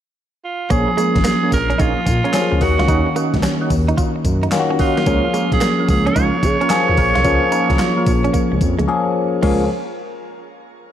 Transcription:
0.44 F4
0.70 A#1 F3 A#3 C#4 G#4, kick, closed hi-hat, tambourine
0.88 muted clean electric guitar stroke
0.97 G#3 A#3 C#4 G#4, closed hi-hat, tambourine
1.16 G#1, kick, snare, closed hi-hat
1.24 A#3 G#4, snare, clap, closed hi-hat, tambourine
1.43 A#3 C#4 G#4
1.52 A#1 A#4, muted clean electric guitar stroke, kick, open hi-hat, tambourine
1.70 C#4, closed hi-hat
1.78 A#1 A#3 C#4 D#4 F4 G#4, kick, closed hi-hat, tambourine
2.06 A#2, muted clean electric guitar stroke, kick, closed hi-hat, tambourine
2.24 A#3 C#4 G#4, closed hi-hat
2.33 F3 A#3 C#4 G#4, snare, clap, closed hi-hat, tambourine
2.52 C#2, muted clean electric guitar stroke
2.61 D#2 D#3 A#3 C#4 D#4 F#4, kick, open hi-hat
2.79 C#2 F4, snare, closed hi-hat
2.88 D#2 C#4 D#4 F#4, kick, closed hi-hat, tambourine
3.06 muted clean electric guitar stroke
3.16 A#3 C#4 D#4 F#4, closed hi-hat, tambourine
3.34 C#2, kick, snare, closed hi-hat
3.43 C#4, snare, clap, closed hi-hat, tambourine
3.61 C#4 D#4 F#4
3.70 D#2, muted clean electric guitar stroke, kick, open hi-hat, tambourine
3.88 D#4, closed hi-hat
3.97 F4, kick, closed hi-hat, tambourine
4.16 muted clean electric guitar stroke
4.25 F#2, kick, closed hi-hat, tambourine
4.43 D#4, closed hi-hat
4.51 D#3 A#3 C#4 F4, snare, clap, closed hi-hat, tambourine
4.59 F#4
4.70 C#4
4.79 C#4 D#4 F4 F#4, muted clean electric guitar stroke, kick, open hi-hat
4.97 A#3, snare, closed hi-hat
5.06 C#2 F3 A#3 C#4 F4 G#4, kick, closed hi-hat, tambourine
5.25 muted clean electric guitar stroke
5.34 G#3 A#3 C#4 F4, closed hi-hat, tambourine
5.52 A#1 G#4, kick, snare, closed hi-hat
5.61 A#3, snare, clap, closed hi-hat, tambourine
5.79 A#3 C#4 F4
5.88 C#2 G#4, muted clean electric guitar stroke, kick, open hi-hat, tambourine
6.06 C#4 C#5, closed hi-hat
6.16 C#2 A#3 C#4 D#4 F4, kick, closed hi-hat, tambourine
6.43 C#3, muted clean electric guitar stroke, kick, closed hi-hat, tambourine
6.61 A#3 C#4 F4, closed hi-hat
6.70 F3 A#3 C#4 G#4, snare, clap, closed hi-hat, tambourine
6.88 D#2, muted clean electric guitar stroke
6.97 A#1 A#3 C#4 F4, kick, open hi-hat
7.15 C2 F4, snare, closed hi-hat
7.24 C#2 F3 A#3 C#4 F4 G#4, kick, closed hi-hat, tambourine
7.43 muted clean electric guitar stroke
7.52 A#3 C#4 D#4 F4, closed hi-hat, tambourine
7.70 C#2, kick, snare, closed hi-hat
7.79 F4, snare, clap, closed hi-hat, tambourine
7.97 A#3 C#4 F4
8.06 A#1, muted clean electric guitar stroke, kick, open hi-hat, tambourine
8.24 C#4, closed hi-hat
8.33 A#3, kick, closed hi-hat, tambourine
8.52 C#2, muted clean electric guitar stroke
8.61 F2, kick, closed hi-hat, tambourine
8.79 C#2 G#3, closed hi-hat
8.87 F3 A#3 C#4 G#4
9.42 C#2 F3 G#3 A#3 C#4 F4 G#4, kick, crash

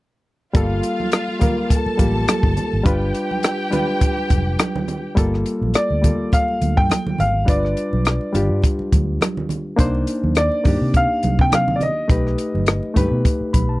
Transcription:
0.53 G1 G3 A#3 F4 A4 F5, kick, closed hi-hat
0.83 closed hi-hat
1.00 high conga
1.12 cross-stick, closed hi-hat, muted conga
1.28 muted conga
1.40 G3 A#3 F4 A#4, kick, cross-stick, closed hi-hat, high conga, low conga
1.70 A4 A5, kick, closed hi-hat
1.86 muted fingered electric bass stroke, muted conga
1.97 A1 G3 A#3 F4 G4, kick, closed hi-hat, high conga
2.28 muted fingered electric bass stroke, cross-stick, closed hi-hat, muted conga, high conga
2.43 G1, kick, muted conga, high conga, low conga
2.57 closed hi-hat, low conga
2.73 G#1
2.84 G1 G3 D4 F4 G4 B4 G5, kick, closed hi-hat
3.02 muted conga
3.15 closed hi-hat
3.31 high conga
3.43 cross-stick, closed hi-hat, muted conga
3.70 G3 D4 F4 B4, closed hi-hat, high conga, low conga
4.01 kick, closed hi-hat, muted conga
4.17 muted conga
4.30 F1, kick, closed hi-hat, high conga
4.59 cross-stick, closed hi-hat, high conga
4.76 muted conga, high conga, low conga
4.88 closed hi-hat, low conga
5.15 G1 G3 A#3 F4 A4, kick, closed hi-hat, muted conga
5.34 cross-stick
5.46 closed hi-hat
5.61 A#1, high conga
5.74 D5, muted fingered electric bass stroke, cross-stick, closed hi-hat, muted conga
5.90 D2, muted conga
6.01 G3 A#3 F4 A4, kick, closed hi-hat, low conga
6.32 F5, kick, closed hi-hat, muted conga
6.48 muted conga
6.62 D2, closed hi-hat, high conga
6.77 G2 G5, kick
6.90 cross-stick, closed hi-hat, muted conga, high conga
7.07 muted conga, high conga, low conga
7.18 G#1 F5, closed hi-hat, low conga
7.45 G1 G3 D4 F4 B4 D5, kick, closed hi-hat, muted conga
7.63 cross-stick, muted conga
7.77 closed hi-hat
7.93 B1, high conga
8.05 cross-stick, closed hi-hat, muted conga
8.21 muted conga
8.33 G1 G3 D4 F4 G4, closed hi-hat, low conga
8.50 G2
8.62 kick, closed hi-hat, muted conga
8.79 muted fingered electric bass stroke, muted conga
8.92 D2, kick, closed hi-hat, high conga
9.21 cross-stick, closed hi-hat, high conga
9.37 muted conga, high conga, low conga
9.49 closed hi-hat, low conga
9.76 C2 A#3 D4 D#4 C5, kick, closed hi-hat, muted conga
9.95 muted conga
10.07 closed hi-hat
10.24 D#2, high conga
10.35 D5, cross-stick, closed hi-hat, muted conga
10.52 muted conga
10.64 G2 A#3 D4 D#4 G4, kick, cross-stick, open hi-hat, low conga
10.81 C3
10.93 F5, kick, closed hi-hat, muted conga
11.23 C2, closed hi-hat, high conga
11.39 C3 G5, kick
11.52 F5, cross-stick, closed hi-hat, high conga
11.68 muted conga, high conga, low conga
11.76 D5
11.81 D#5, closed hi-hat, low conga
12.08 B1 A3 D#4 G4 B4, kick, closed hi-hat, muted conga
12.27 cross-stick
12.38 closed hi-hat
12.54 G1, high conga
12.66 cross-stick, closed hi-hat, muted conga
12.83 muted conga
12.94 G2 A3 D#4 G4 B4, kick, closed hi-hat, high conga, low conga
13.11 B2
13.25 kick, closed hi-hat
13.41 muted fingered electric bass stroke
13.53 B1 B5, kick, closed hi-hat, high conga
13.69 A5

